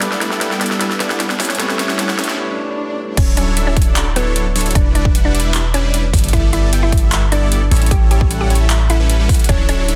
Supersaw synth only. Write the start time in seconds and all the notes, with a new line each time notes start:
0.02 G3 B3 E4 A4 D5
0.21 G3 B3 E4 A4 D5
0.41 G3 B3 E4 A4 G5
0.61 G3 B3 E4 A4 D5
0.71 G3 B3 E4 A4 E5
0.80 G3 B3 E4 A4 E5
1.00 G3 B3 E4 A4 D5
1.20 G3 B3 E4 A4 D5
1.40 G3 C#4 E4 A4 C#5
1.50 G3 C#4 E4 A4 C#5
1.59 G3 C#4 E4 A4 C#5
1.79 G3 C#4 E4 A4 C#5
1.99 G3 C#4 E4 A4 F#5
2.19 G3 C#4 E4 A4 C#5
2.29 G3 C#4 E4 A4 E5
3.17 F#3 D4 E4 A4 C#5
3.37 F#3 D4 E4 A4 C#5
3.57 F#3 D4 E4 A4 E5
3.77 F#3 D4 E4 A4 C#5
3.87 F#3 D4 E4 A4 D5
3.96 F#3 D4 E4 A4 D5
4.16 F#3 D4 E4 A4 C#5
4.36 F#3 D4 E4 A4 C#5
4.56 F#3 D4 E4 A4 C#5
4.66 F#3 D4 E4 A4 C#5
4.75 G3 D4 E4 B4 D5
4.95 G3 D4 E4 B4 D5
5.15 G3 D4 E4 B4 F#5
5.34 G3 D4 E4 B4 D5
5.45 G3 D4 E4 B4 E5
5.54 G3 D4 E4 B4 E5
5.74 G3 D4 E4 B4 D5
5.94 G3 D4 E4 B4 D5
6.13 G3 B3 E4 A4 D5
6.24 G3 B3 E4 A4 D5
6.33 G3 B3 E4 A4 D5
6.53 G3 B3 E4 A4 D5
6.73 G3 B3 E4 A4 G5
6.92 G3 B3 E4 A4 D5
7.02 G3 B3 E4 A4 E5
7.12 G3 B3 E4 A4 E5
7.32 G3 B3 E4 A4 D5
7.52 G3 B3 E4 A4 D5
7.71 G3 C#4 E4 A4 C#5
7.81 G3 C#4 E4 A4 C#5
7.91 G3 C#4 E4 A4 C#5
8.11 G3 C#4 E4 A4 C#5
8.31 G3 C#4 E4 A4 F#5
8.50 G3 C#4 E4 A4 C#5
8.60 G3 C#4 E4 A4 E5
8.70 G3 C#4 E4 A4 E5
8.90 G3 C#4 E4 A4 F#5
9.00 G3 C#4 E4 A4 B4
9.10 G3 C#4 E4 A4 B4
9.20 G3 C#4 E4 A4 B4
9.29 G3 C#4 E4 A4 F#5
9.49 F#3 D4 E4 A4 C#5
9.69 F#3 D4 E4 A4 C#5
9.88 F#3 D4 E4 A4 E5